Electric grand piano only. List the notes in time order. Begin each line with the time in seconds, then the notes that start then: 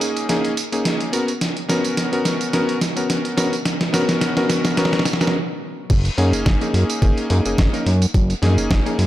Already playing: A#3 C#4 D#4 G#4
0.29 A#3 C#4 D#4 G#4
0.72 A#3 C#4 D#4 G#4
1.12 B3 C#4 F#4 A#4
1.68 B3 C#4 F#4 A#4
2.12 B3 C#4 F#4 A#4
2.53 B3 C#4 F#4 A#4
2.96 B3 C#4 F#4 A#4
3.37 B3 C#4 F#4 A#4
3.93 B3 C#4 F#4 A#4
4.37 B3 C#4 F#4 A#4
4.77 B3 C#4 F#4 A#4
5.21 B3 C#4 F#4 A#4
6.17 A#3 C#4 D#4 G#4
6.61 A#3 C#4 D#4 G#4
7.02 A#3 C#4 D#4 G#4
7.30 A#3 C#4 D#4 G#4
7.45 A#3 C#4 D#4 G#4
7.73 A#3 C#4 D#4 A#4
8.42 A#3 C#4 D#4 G#4
8.86 A#3 C#4 D#4 G#4